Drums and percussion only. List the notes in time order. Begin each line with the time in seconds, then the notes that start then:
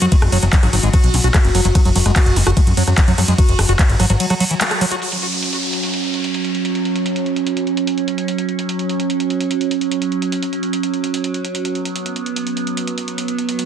0.02 closed hi-hat
0.12 kick, closed hi-hat, ride
0.22 cross-stick, closed hi-hat
0.32 open hi-hat
0.43 closed hi-hat
0.53 kick, clap, closed hi-hat, ride
0.63 cross-stick, closed hi-hat
0.73 open hi-hat
0.83 closed hi-hat
0.94 kick, cross-stick, closed hi-hat, ride
1.04 closed hi-hat
1.14 open hi-hat
1.24 closed hi-hat
1.34 kick, cross-stick, clap, closed hi-hat, ride
1.45 closed hi-hat
1.55 open hi-hat
1.65 closed hi-hat
1.75 kick, cross-stick, closed hi-hat, ride
1.85 closed hi-hat
1.96 open hi-hat
2.06 cross-stick, closed hi-hat
2.16 kick, clap, closed hi-hat, ride
2.26 closed hi-hat
2.36 open hi-hat
2.47 cross-stick, closed hi-hat
2.57 kick, closed hi-hat, ride
2.67 closed hi-hat
2.77 open hi-hat
2.87 cross-stick, closed hi-hat
2.98 kick, clap, closed hi-hat, ride
3.08 closed hi-hat
3.18 cross-stick, open hi-hat
3.28 closed hi-hat
3.38 kick, closed hi-hat, ride
3.49 closed hi-hat
3.59 cross-stick, open hi-hat
3.69 closed hi-hat
3.79 kick, clap, closed hi-hat, ride
3.89 closed hi-hat
4.00 cross-stick, open hi-hat
4.10 closed hi-hat
4.20 closed hi-hat, ride
4.30 cross-stick, closed hi-hat
4.40 open hi-hat
4.51 closed hi-hat
4.61 clap, closed hi-hat, ride
4.71 cross-stick, closed hi-hat
4.81 open hi-hat
4.91 closed hi-hat
5.02 closed hi-hat
5.12 closed hi-hat
5.22 closed hi-hat
5.32 closed hi-hat
5.43 closed hi-hat
5.53 closed hi-hat
5.63 closed hi-hat
5.73 closed hi-hat
5.83 closed hi-hat
5.94 closed hi-hat
6.04 closed hi-hat
6.14 closed hi-hat
6.24 closed hi-hat
6.34 closed hi-hat
6.45 closed hi-hat
6.55 closed hi-hat
6.65 closed hi-hat
6.75 closed hi-hat
6.85 closed hi-hat
6.96 closed hi-hat
7.06 closed hi-hat
7.16 closed hi-hat
7.26 closed hi-hat
7.36 closed hi-hat
7.47 closed hi-hat
7.57 closed hi-hat
7.67 closed hi-hat
7.77 closed hi-hat
7.87 closed hi-hat
7.98 closed hi-hat
8.08 closed hi-hat
8.18 closed hi-hat
8.28 closed hi-hat
8.38 closed hi-hat
8.49 closed hi-hat
8.59 closed hi-hat
8.69 closed hi-hat
8.79 closed hi-hat
8.89 closed hi-hat
9.00 closed hi-hat
9.10 closed hi-hat
9.20 closed hi-hat
9.30 closed hi-hat
9.40 closed hi-hat
9.51 closed hi-hat
9.61 closed hi-hat
9.71 closed hi-hat
9.81 closed hi-hat
9.91 closed hi-hat
10.02 closed hi-hat
10.12 closed hi-hat
10.22 closed hi-hat
10.32 closed hi-hat
10.43 closed hi-hat
10.53 closed hi-hat
10.63 closed hi-hat
10.73 closed hi-hat
10.83 closed hi-hat
10.94 closed hi-hat
11.04 closed hi-hat
11.14 closed hi-hat
11.24 closed hi-hat
11.34 closed hi-hat
11.45 closed hi-hat
11.55 closed hi-hat
11.65 closed hi-hat
11.75 closed hi-hat
11.85 closed hi-hat
11.96 closed hi-hat
12.06 closed hi-hat
12.16 closed hi-hat
12.26 closed hi-hat
12.36 closed hi-hat
12.47 closed hi-hat
12.57 closed hi-hat
12.67 closed hi-hat
12.77 closed hi-hat
12.87 closed hi-hat
12.98 closed hi-hat
13.08 closed hi-hat
13.18 closed hi-hat
13.28 closed hi-hat
13.38 closed hi-hat
13.49 closed hi-hat
13.59 closed hi-hat